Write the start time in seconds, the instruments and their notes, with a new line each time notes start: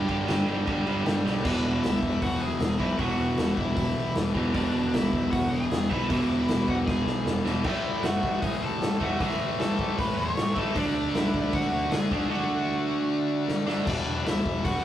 Already playing: overdriven electric guitar G4 G5
0.08 picked electric bass G1, distorted electric guitar G2 D3 G3, kick, crash
0.27 picked electric bass G1, distorted electric guitar G2 D3 G3, snare, crash
0.46 picked electric bass G1, distorted electric guitar G2 D3 G3, crash
0.67 picked electric bass G1, distorted electric guitar G2 D3 G3, kick, crash
0.86 picked electric bass G1, distorted electric guitar G2 D3 G3, crash
1.05 picked electric bass G1, distorted electric guitar G2 D3 G3, snare, crash
1.24 picked electric bass B1, distorted electric guitar G2 D3 G3, snare
1.44 picked electric bass E1, distorted electric guitar E2 B2 E3, overdriven electric guitar D4 D5, kick, crash
1.63 picked electric bass E1
1.81 picked electric bass D2, overdriven electric guitar E4 E5, snare, open hi-hat
2.03 picked electric bass E1, kick
2.22 picked electric bass E1, overdriven electric guitar F#4 F#5, kick, open hi-hat
2.40 picked electric bass E1, overdriven electric guitar G#4 G#5
2.58 picked electric bass E2, snare, open hi-hat
2.78 picked electric bass B1, distorted electric guitar E2 B2 E3, overdriven electric guitar E4 E5, kick
2.98 picked electric bass E1, distorted electric guitar E2 B2 E3, overdriven electric guitar F#4 F#5, kick, open hi-hat
3.16 picked electric bass E1
3.37 picked electric bass E1, snare, open hi-hat
3.57 picked electric bass E1, overdriven electric guitar E4 E5, kick
3.76 picked electric bass E1, overdriven electric guitar E4 E5, kick, open hi-hat
3.95 picked electric bass B1
4.15 picked electric bass E1, snare, open hi-hat
4.34 picked electric bass E1, distorted electric guitar E2 B2 E3, kick
4.53 picked electric bass E1, distorted electric guitar E2 B2 E3, overdriven electric guitar D4 D5, kick, open hi-hat
4.74 picked electric bass E1
4.94 picked electric bass D2, overdriven electric guitar E4 E5, snare, open hi-hat
5.13 picked electric bass E1, kick
5.32 picked electric bass E1, overdriven electric guitar F#4 F#5, kick, open hi-hat
5.49 picked electric bass E1, overdriven electric guitar G#4 G#5
5.70 picked electric bass E2, snare, open hi-hat
5.90 picked electric bass B1, distorted electric guitar E2 B2 E3, overdriven electric guitar E4 E5, kick
6.10 picked electric bass E1, distorted electric guitar E2 B2 E3, overdriven electric guitar E4 E5, kick, open hi-hat
6.28 picked electric bass E1
6.48 picked electric bass E1, snare, open hi-hat
6.68 picked electric bass E1, overdriven electric guitar F#4 F#5, kick
6.87 picked electric bass E1, overdriven electric guitar G#4 G#5, kick, snare
7.06 picked electric bass B1, snare
7.25 picked electric bass E1, snare
7.44 picked electric bass E1, distorted electric guitar E2 B2 E3, snare
7.64 picked electric bass A1, distorted electric guitar A2 E3 A3, overdriven electric guitar E4 E5, kick, crash
7.83 picked electric bass A1
8.02 picked electric bass F#1, overdriven electric guitar F#4 F#5, snare, open hi-hat
8.23 picked electric bass A1, kick
8.42 picked electric bass A1, overdriven electric guitar G#4 G#5, kick, open hi-hat
8.60 picked electric bass A1, overdriven electric guitar A4 A5
8.80 picked electric bass A2, snare, open hi-hat
9.00 picked electric bass E2, distorted electric guitar A2 E3 A3, overdriven electric guitar F#4 F#5, kick
9.19 picked electric bass A1, distorted electric guitar A2 E3 A3, overdriven electric guitar G#4 G#5, kick, open hi-hat
9.38 picked electric bass A1
9.58 picked electric bass A1, overdriven electric guitar A4 A5, snare, open hi-hat
9.79 picked electric bass A1, kick
9.98 picked electric bass A1, overdriven electric guitar B4 B5, kick, open hi-hat
10.15 picked electric bass E2, overdriven electric guitar C#5 C#6
10.35 picked electric bass A1, snare, open hi-hat
10.55 picked electric bass A1, distorted electric guitar A2 E3 A3, overdriven electric guitar A4 A5, kick
10.75 picked electric bass D2, distorted electric guitar D3 A3 D4, overdriven electric guitar D4, kick, open hi-hat
10.79 overdriven electric guitar D5
10.94 picked electric bass D2
11.14 picked electric bass B1, overdriven electric guitar E4, snare, open hi-hat
11.18 overdriven electric guitar E5
11.33 picked electric bass D2, kick
11.53 picked electric bass D2, overdriven electric guitar F#4 F#5, kick, open hi-hat
11.70 picked electric bass D2
11.90 picked electric bass D3, overdriven electric guitar G#4 G#5, snare, open hi-hat
12.11 picked electric bass D2, distorted electric guitar D3 A3 D4, kick
12.30 distorted electric guitar D3 A3 D4, overdriven electric guitar F#4 F#5
13.48 snare
13.66 distorted electric guitar D3 A3 D4, snare
13.86 picked electric bass E1, distorted electric guitar E2 B2 E3, overdriven electric guitar D4 D5, kick, crash
14.05 picked electric bass E1
14.25 picked electric bass D2, overdriven electric guitar E4 E5, snare, open hi-hat
14.45 picked electric bass E1, kick
14.63 picked electric bass E1, overdriven electric guitar F#4 F#5, kick, open hi-hat